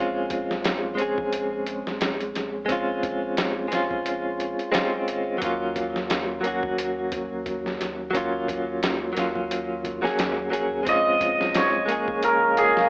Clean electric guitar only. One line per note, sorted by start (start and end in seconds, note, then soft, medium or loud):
0.00 0.94 G#3 medium
0.00 0.95 C4 medium
0.00 0.96 C#4 medium
0.00 0.97 F4 medium
0.95 2.63 G#3 medium
0.95 2.65 C4 medium
1.00 2.66 C#4 medium
1.00 2.67 G#4 medium
2.66 3.66 G#3 medium
2.66 3.67 C4 medium
2.70 3.68 C#4 medium
2.70 3.69 F4 medium
3.68 4.68 G#3 medium
3.68 4.69 C4 medium
3.73 4.70 C#4 medium
3.73 4.72 F4 medium
4.72 5.37 G#3 medium
4.72 5.37 C4 medium
4.72 5.38 C#4 medium
4.72 5.38 F4 medium
5.38 6.38 F#3 medium
5.38 6.40 A#3 medium
5.42 6.41 C#4 medium
5.42 6.42 F4 medium
6.41 8.09 F#3 medium
6.41 8.10 A#3 medium
6.45 8.11 C#4 medium
6.45 8.12 F#4 medium
8.11 9.11 F#3 medium
8.11 9.12 A#3 medium
8.15 9.13 C#4 medium
8.15 9.14 F4 medium
9.13 9.98 F#3 medium
9.13 9.99 A#3 medium
9.17 10.00 C#4 medium
9.17 10.01 F4 medium
10.02 10.48 F#3 medium
10.02 10.49 A#3 medium
10.02 10.49 C#4 medium
10.02 10.50 G#4 medium
10.50 10.82 F#3 medium
10.50 10.83 A#3 medium
10.50 10.83 C#4 medium
10.50 10.84 G#4 medium
10.83 11.84 G#3 medium
10.83 11.85 C4 medium
10.87 11.86 C#4 medium
10.87 11.87 F4 medium
11.86 12.89 G#3 medium
11.86 12.89 A#3 medium
11.90 12.89 C#4 medium
11.90 12.89 G#4 medium